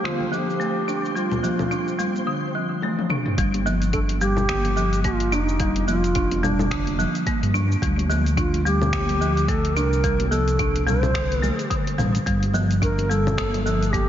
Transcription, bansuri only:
0.05 F4
0.33 G4
1.16 F4
3.93 A4
4.20 G4
5.05 F4
5.34 D#4
5.89 F4
6.44 D4
8.38 F4
8.66 G4
9.48 A4
9.74 A#4
10.30 A4
10.87 C5
12.83 A#4
13.10 A4
13.64 A4
13.91 G4

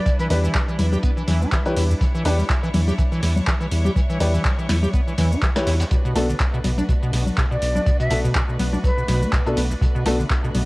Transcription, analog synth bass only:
0.30 E2
0.79 E2
1.28 E2
1.77 E2
2.25 E2
2.74 E2
3.23 E2
3.72 E2
4.20 E2
4.69 E2
5.18 E2
5.67 E2
6.16 B1
6.64 B1
7.13 B1
7.62 B1
8.11 B1
8.59 B1
9.08 B1
9.57 B1
10.06 B1
10.55 B1

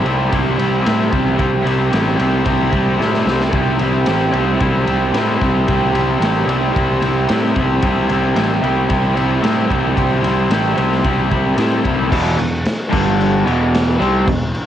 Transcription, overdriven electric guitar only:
0.02 G3 C4 E4
0.07 C3
0.30 C3 G3 C4
0.35 E4
0.55 C4 E4
0.60 G3
0.81 C3 G3 C4
0.85 E4
1.09 G3 C4 E4
1.35 C3 G3 C4
1.39 E4
1.62 C4 E4
1.67 G3
1.90 C3 G3 C4
1.95 E4
2.16 G3 C4 E4
2.21 C3
2.43 C3 G3 C4
2.48 E4
2.69 C4 E4
2.75 G3
2.97 C3 G3 C4 E4
3.23 C4 E4
3.29 G3
3.50 C3 G3 C4
3.55 E4
3.79 C4 E4
3.84 G3
4.05 C3 G3 C4
4.10 E4
4.31 G3 C4 E4
4.36 C3
4.57 C3 G3
4.61 C4 E4
4.83 C4 E4
4.88 G3
5.12 C3 G3 C4
5.16 E4
5.39 C4 E4
5.44 G3
5.66 C3 G3 C4
5.71 E4
5.94 C4 E4
5.98 G3
6.19 C3 G3
6.23 C4 E4
6.46 G3 C4 E4
6.51 C3
6.73 C3 G3 C4
6.78 E4
7.00 C4 E4
7.05 G3
7.27 C3 G3 C4
7.32 E4
7.55 C4 E4
7.60 G3
7.82 C3 G3 C4 E4
8.08 C4 E4
8.13 G3
8.34 C3 G3 C4
8.38 E4
8.62 G3 C4 E4
8.66 C3
8.88 C3 G3 C4
8.94 E4
9.15 C4 E4
9.20 G3
9.41 C3 G3 C4
9.45 E4
9.67 C4 E4
9.72 G3
9.94 C3 G3 C4
9.98 E4
10.21 C4 E4
10.26 G3
10.50 C3 G3 C4 E4
10.75 G3 C4 E4
10.80 C3
11.02 C3 G3 C4
11.07 E4
11.30 C4 E4
11.35 G3
11.57 C3 G3 C4 E4
11.83 C4 E4
11.88 G3
12.10 E2 B2 E3
12.37 E2 B2
12.89 G2 D3 G3
13.44 E2 B2 E3
13.99 C3 G3 C4
14.27 E2 B2

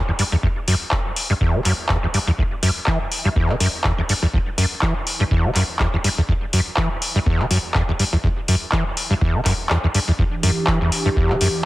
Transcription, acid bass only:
0.08 E2
0.19 G2
0.32 E2
0.43 E2
0.68 F#2
1.30 G2
1.41 E2
1.54 D3
1.65 F#2
1.90 E2
2.03 E2
2.14 G2
2.27 E2
2.38 E2
2.63 F#2
2.87 E3
3.25 G2
3.36 E2
3.50 D3
3.60 F#2
3.85 E2
3.98 E2
4.09 G2
4.23 E2
4.33 E2
4.58 F#2
4.82 E3
5.20 G2
5.31 E2
5.45 D3
5.56 F#2
5.80 E2
5.93 E2
6.04 G2
6.18 E2
6.29 E2
6.53 F#2
6.78 E3
7.15 G2
7.26 E2
7.40 D3
7.51 F#2
7.75 E2
7.89 E2
7.99 G2
8.13 E2
8.24 E2
8.48 F#2
8.73 E3
9.10 G2
9.21 E2
9.35 D3
9.46 F#2
9.70 E2
9.84 E2
9.95 G2
10.08 E2
10.19 E2
10.43 F#2
10.68 E3
10.81 E2
11.05 G2
11.16 E2
11.30 D3
11.41 F#2

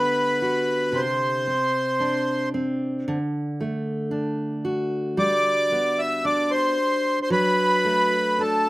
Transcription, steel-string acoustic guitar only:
Already playing: D3 G3 B3
0.42 F#4
0.92 C3
1.47 C4
2.00 D4
2.54 C4
3.08 D3
3.61 A3
4.11 D4
4.65 F#4
5.17 G3
5.72 B3
6.25 D4
7.30 F#3
7.85 A3
8.39 D4

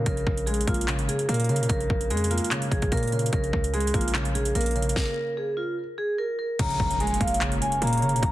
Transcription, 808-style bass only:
0.06 A#1
0.27 A#1
0.68 A#1
0.99 G#1
1.29 A#2
1.49 C#3
1.60 A#2
1.70 A#1
1.90 A#1
2.10 F2
2.72 A#1
2.82 A#1
2.92 A#2
3.33 A#1
3.53 C#2
3.94 A#1
4.55 A#1
6.59 A#1
6.80 A#1
7.21 A#1
7.52 G#1
7.82 A#2
8.02 C#3
8.13 A#2
8.23 A#1

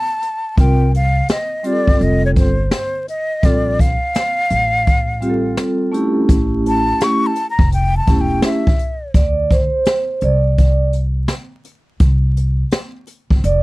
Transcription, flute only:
Already playing: A5
0.59 G5
0.96 F5
1.31 D#5
1.66 D5
2.03 D#5
2.26 C#5
2.38 C5
2.74 C5
3.09 D#5
3.45 D5
3.80 F5
6.68 A5
7.03 C#6
7.27 A5
7.50 A#5
7.73 G5
7.97 A5
8.21 G5
8.45 E5

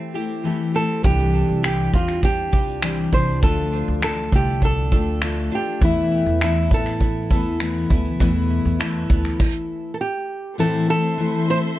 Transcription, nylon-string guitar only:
Already playing: C4
0.76 A4
1.05 G4
1.66 G4
1.95 F4
2.25 G4
3.14 C5
3.43 A4
4.04 A4
4.35 G4
4.65 A4
5.55 G4
5.84 E4
6.44 E4
6.74 A4
9.94 A4
10.01 G4
10.60 A4
10.90 A4
11.50 C5

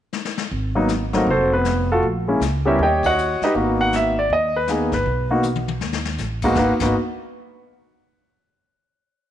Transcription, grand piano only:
0.75 F#3 A#3 B3 D#4
1.13 F#3 A3 A#3 C4 D#4 F#4 A#4
1.30 C4 F#4 A4 C5
1.53 B3 B4
1.92 A3 F4 F#4 A4
2.28 G#3 A#3 C#4 E4
2.65 G3 B3 C#4 E4 G4 A#4 C#5 E5
2.82 G4 C#5 D#5 G5
3.06 F#4 C#5 D#5 F#5
3.44 D#4 G4 B4 D#5
3.55 A#3 B3 D#4 F#4
3.81 F#5
3.96 E5
4.19 D5
4.33 D#5
4.56 B4
4.69 A#3 B3 D#4 G#4
4.94 B4
5.31 A#3 B3 D#4 F#4
6.44 G#2 A#3 B3 D#4 F#4
6.57 A#3 B3 D#4 F#4 B4
6.82 A#3 B3 D#4 F#4 B4

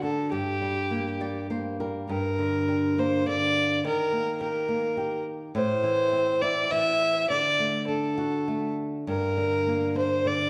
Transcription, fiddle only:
0.04 A4
0.32 G4
2.10 A#4
2.99 C5
3.28 D5
3.86 A#4
4.42 A#4
5.56 C5
6.42 D5
6.71 E5
7.30 D5
7.88 A4
9.09 A#4
9.98 C5
10.28 D5

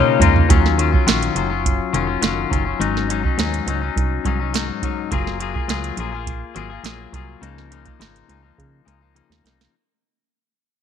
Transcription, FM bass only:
0.20 C#2
0.50 D#2
1.07 A#1
1.36 F#1
1.94 F1
2.22 F#1
2.51 F#1
2.80 G#1
3.38 D#2
3.67 C#2
3.96 C2
4.25 C2
5.12 F#1
5.68 C#2
5.97 A#1
6.56 G#1
6.84 A#1
7.13 C2
7.42 C#2
8.00 G#1
8.29 C#2
8.58 C#3
8.87 C#2
9.30 D#2
9.44 C2

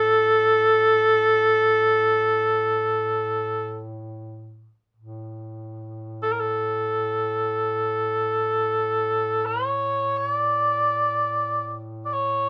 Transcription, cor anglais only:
Already playing: A4
6.23 A4
6.32 A#4
6.40 A4
9.46 C#5
10.17 C#5
10.30 D5
12.05 D5
12.13 C#5

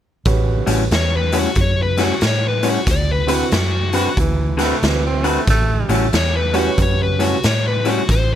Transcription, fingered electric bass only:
0.26 A1
0.67 A1
0.91 E2
1.56 F#2
2.22 A2
2.87 D2
3.52 F#2
4.17 D2
4.82 D2
5.48 A1
5.89 A1
6.13 E2
6.78 F#2
7.44 A2
8.09 A1

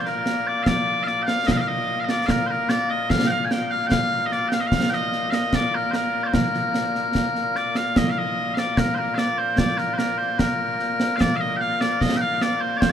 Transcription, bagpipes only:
Already playing: A#2 A#3
0.06 A#4
0.47 D5
0.63 F5
0.67 D5
1.03 F5
1.07 D5
1.22 G5
1.27 F5
1.47 D#5
1.52 F5
1.57 D#5 F5
1.67 D#5
2.00 F5
2.04 D#5
2.10 D5
2.26 F5
2.30 A#4
2.46 C5
2.50 A#4
2.69 D5
2.90 D#5
3.10 F5
3.27 F5 G5
3.45 G#5
3.51 G5
3.71 F5
3.87 G5
3.91 F5
4.26 D#5
4.32 D5
4.48 G5
4.53 F5
4.60 D#5
4.67 F5
4.90 D#5 G5
5.30 D#5 F5
5.55 D5
5.75 A#4
5.91 A#4 C5
6.23 C5 D5
6.33 A#4
7.56 D5
7.76 F5
7.97 D#5
8.10 F5
8.18 D#5
8.54 F5
8.58 D5
8.78 A#4
8.94 A#4 C5
9.15 D5 F5
9.38 C5
9.58 D5
9.78 A#4
9.93 C5
9.98 A#4
10.18 C5
10.39 A#4
11.16 F5
11.21 D5
11.36 F5
11.40 D#5
11.56 G5
11.61 F5
11.81 D5
12.01 D#5
12.16 G5
12.21 F5
12.42 D5
12.61 C5
12.77 C5 D5

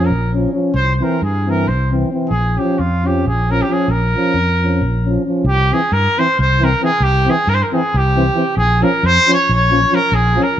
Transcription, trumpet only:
0.05 A#4
0.76 C5
0.96 C5
1.03 A#4
1.24 G#4
1.50 A#4
1.68 C5
2.30 G#4
2.58 G4
2.79 F4
3.07 G4
3.28 G#4
3.51 A#4
3.62 G4
3.72 G#4
3.91 A#4
5.45 G4
5.73 G#4
5.93 A#4
6.19 C5
6.41 C5
6.64 A#4
6.84 G#4
7.03 G4
7.30 G#4
7.49 A#4
7.55 C5
7.63 A#4
7.74 G#4
7.97 G4
8.57 G#4
8.83 A#4
9.06 C5
9.34 C#5
9.54 C#5
9.95 A#4
10.14 G#4
10.43 A#4

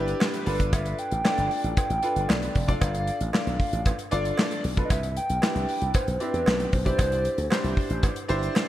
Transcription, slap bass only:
Already playing: G1
0.46 G1
1.12 A1
1.38 G1
1.64 A1
1.90 A1
2.16 G1
2.29 B1
2.56 F1
2.82 G1
3.21 A1
3.47 B1
3.73 A1
4.12 G1
4.64 B1
4.90 C2
5.30 B1
5.55 C2
5.82 C2
6.08 B1
6.34 E2
6.47 B1
6.73 B1
6.99 C2
7.38 D2
7.64 C2
7.90 A1
8.30 G1

